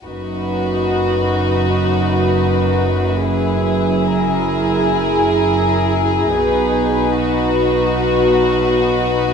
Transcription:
0.05 double bass section F#1, cello section F#2, viola section D#4, violin section F#4 B4
3.26 viola section E4, violin section G#4
4.04 violin section A#4
6.35 double bass section B1, cello section B2, viola section D#4, violin section B4
7.13 violin section F#4

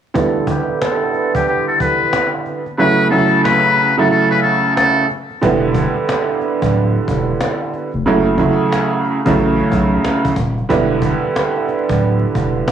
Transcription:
0.14 upright piano D3 G3 B3 E4, muted trumpet A4, cajon bass, cajon slap
0.47 muted trumpet G4, cajon bass
0.81 muted trumpet A4, cajon slap
1.14 cajon slap
1.35 muted trumpet G4, cajon bass
1.47 muted trumpet G4, cajon slap
1.68 muted trumpet A4
1.80 muted trumpet B4, cajon bass
2.13 cajon slap
2.46 cajon slap
2.67 cajon slap
2.78 upright piano C#3 F#3 A3 E4, muted trumpet B4, cajon slap
3.10 upright piano C#3 F#3 A3 E4, muted trumpet A4, cajon slap
3.44 muted trumpet B4, cajon slap
3.77 cajon slap
3.98 upright piano C#3 F#3 A3 E4, muted trumpet A4
4.11 muted trumpet A4, cajon slap
4.31 muted trumpet B4, cajon slap
4.43 muted trumpet A4, cajon slap
4.76 muted trumpet A4, cajon slap
5.10 cajon slap
5.30 cajon slap
5.41 sub bass E1, upright piano D3 G3 B3 E4, cajon bass, cajon slap
5.74 cajon bass
6.09 cajon slap
6.41 cajon slap
6.62 sub bass D1, cajon bass
6.74 cajon slap
7.08 sub bass E1, cajon bass
7.41 cajon slap
7.74 cajon slap
7.94 sub bass F1, cajon slap
8.06 sub bass F#1, upright piano C#3 F#3 A3 E4, cajon slap
8.38 upright piano C#3 F#3 A3 E4, cajon bass
8.73 cajon slap
9.05 cajon slap
9.25 sub bass A1, upright piano C#3 F#3 A3 E4, cajon bass
9.38 cajon slap
9.59 cajon slap
9.72 sub bass B1, cajon bass
10.04 cajon slap
10.25 cajon bass
10.36 sub bass D#1, cajon bass
10.58 cajon slap
10.69 sub bass E1, upright piano D3 G3 B3 E4, cajon bass, cajon slap
11.02 cajon bass
11.36 cajon slap
11.68 cajon slap
11.89 sub bass D1, cajon bass
12.02 cajon slap
12.35 sub bass E1, cajon bass
12.68 cajon slap

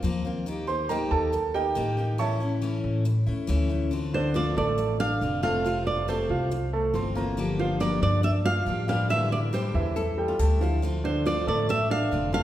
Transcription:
0.03 upright bass D#2, steel-string acoustic guitar F3 A#3 C4 F4
0.25 steel-string acoustic guitar A#3 C4 F4
0.46 steel-string acoustic guitar D#3 A#3 D#4 G4
0.67 steel-string acoustic guitar A#3 D#4 G4, grand piano C5 C6
0.89 steel-string acoustic guitar D#3 A#3 D#4 G4, grand piano A#4 D#5 G5 A#5
1.11 upright bass D#2, grand piano A4 A5
1.33 muted steel-string acoustic guitar stroke
1.54 steel-string acoustic guitar A#3 D#4 G4, grand piano G4 A#4 D#5 G5
1.75 upright bass A1, steel-string acoustic guitar D#3 A#3 D#4 G4
1.97 steel-string acoustic guitar A#3 D#4 G4
2.18 steel-string acoustic guitar E3 A3 C#4 E4, grand piano C#5 E5 A5 C#6
2.40 steel-string acoustic guitar A3 C#4 E4
2.62 steel-string acoustic guitar E3 A3 C#4 E4
2.84 upright bass A2
3.05 muted steel-string acoustic guitar stroke
3.26 upright bass E2, steel-string acoustic guitar A3 C#4 E4
3.47 upright bass D2, steel-string acoustic guitar E3 A3 C#4 E4
3.69 steel-string acoustic guitar A3 C#4 E4
3.91 steel-string acoustic guitar D3 A3 C4 F4
4.14 grand piano D3 D4 D5, nylon-string guitar C5
4.34 steel-string acoustic guitar D3 A3 C4 F4, grand piano F3 F4 F5, nylon-string guitar D5
4.57 upright bass A1, grand piano A3 A4 A5, nylon-string guitar D5
4.78 muted steel-string acoustic guitar stroke
5.00 grand piano D4 D5 D6, nylon-string guitar F5
5.21 upright bass F1, steel-string acoustic guitar D3 A3 C4 F4
5.43 grand piano A3 A4 A5, steel-string acoustic guitar A3 C4 F4, nylon-string guitar F5
5.64 steel-string acoustic guitar C3 A3 C4 F4, grand piano F4 F5
5.87 nylon-string guitar D5
6.08 steel-string acoustic guitar C3 A3 C4 F4, grand piano A3 A4 A5, nylon-string guitar C5
6.29 upright bass C2, grand piano F4 F5
6.51 muted steel-string acoustic guitar stroke
6.73 grand piano A3 A4 A5
6.94 upright bass G1, steel-string acoustic guitar E3 A3 C4 F4, grand piano C4 C5 C6
7.15 steel-string acoustic guitar E3 A3 C4 F4, grand piano A#3 A#4 A#5
7.37 steel-string acoustic guitar D3 F3 A#3 D4 G4
7.59 grand piano F3 F4 F5, nylon-string guitar C5
7.80 steel-string acoustic guitar D3 F3 A#3 D4 G4, grand piano A#3 A#4 A#5, nylon-string guitar D5
8.02 upright bass G2, grand piano D4 D5 D6, nylon-string guitar D5
8.23 nylon-string guitar E5, muted steel-string acoustic guitar stroke
8.45 grand piano F4 F5 F6, nylon-string guitar F5
8.66 upright bass A2, steel-string acoustic guitar F3 A#3 D4 G4
8.88 steel-string acoustic guitar F3 A#3 D4 G4, grand piano G3 G4 G5, nylon-string guitar F5
9.10 steel-string acoustic guitar D3 G3 D4 E4, grand piano E3 E4 E5, nylon-string guitar E5
9.32 nylon-string guitar D5
9.53 steel-string acoustic guitar D3 G3 D4 E4, grand piano G3 G4 G5, nylon-string guitar C5
9.74 upright bass E2, grand piano E3 E4 E5
9.96 nylon-string guitar A4, muted steel-string acoustic guitar stroke
10.18 grand piano G3 G4 G5
10.28 nylon-string guitar F4
10.39 upright bass D2, steel-string acoustic guitar D3 G3 D4 E4, grand piano A3 A4 A5, nylon-string guitar G4
10.61 grand piano F3 F4 F5, steel-string acoustic guitar G3 D4 E4
10.82 steel-string acoustic guitar D3 A3 C4 F4
11.04 grand piano D3 D4 D5, nylon-string guitar C5
11.26 steel-string acoustic guitar D3 A3 C4 F4, grand piano F3 F4 F5, nylon-string guitar D5
11.47 upright bass A1, grand piano A3 A4 A5, nylon-string guitar D5
11.69 nylon-string guitar E5, muted steel-string acoustic guitar stroke
11.90 grand piano D4 D5 D6, nylon-string guitar F5
12.11 upright bass F1, steel-string acoustic guitar D3 A3 C4 F4
12.33 grand piano A3 A4 A5, steel-string acoustic guitar A3 C4 F4, nylon-string guitar F5

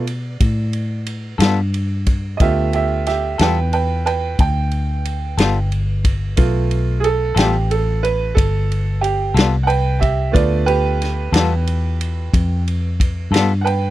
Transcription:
Already playing: fingered electric bass B2, upright piano D5
0.07 ride
0.40 fingered electric bass A2, kick, ride
0.73 ride
1.06 ride
1.38 fingered electric bass G2, clean electric guitar G3 B3 F4 A4, snare, ride
1.74 ride
2.06 kick, ride
2.37 fingered electric bass D2, upright piano A3 F4 D#5, kick, ride
2.41 upright piano B3 G4 E5
2.73 upright piano G4 E5, ride
3.06 upright piano G4 E5, snare, ride
3.38 fingered electric bass E2, clean electric guitar G3 B3 F4 A4, upright piano B4 G5, snare, ride
3.73 upright piano B4 G5, ride
4.06 upright piano B4 G5, ride
4.39 fingered electric bass D2, upright piano G5, kick, ride
4.71 ride
5.05 ride
5.37 fingered electric bass G1, clean electric guitar G3 B3 F4 A4, snare, ride
5.72 ride
6.05 kick, ride
6.37 fingered electric bass B1, upright piano A3 B3 F4, kick, ride
6.71 ride
7.00 upright piano G#4, ride
7.04 upright piano A4
7.35 fingered electric bass A1, clean electric guitar G3 B3 F4 A4, upright piano G4, ride
7.39 snare
7.71 upright piano A4, ride
8.03 upright piano B4, ride
8.35 fingered electric bass G1, upright piano A4, kick, ride
8.72 ride
9.01 upright piano G4, ride
9.34 fingered electric bass C2, clean electric guitar G3 B3 F4 A4, ride
9.38 snare
9.63 upright piano B4 F#5 G5
9.70 ride
10.00 upright piano G4 E5, kick, ride
10.32 fingered electric bass D2, upright piano A3 B3 F4 B4 D5, kick, ride
10.66 upright piano G4 B4, ride
11.02 snare, ride
11.32 fingered electric bass E2, clean electric guitar G3 B3 F4 A4, snare, ride
11.67 ride
12.01 ride
12.34 fingered electric bass F2, kick, ride
12.68 ride
13.00 kick, ride
13.31 fingered electric bass G2, clean electric guitar G3 B3 F4 A4, ride
13.36 snare
13.61 upright piano B4 F#5
13.65 upright piano G5, ride

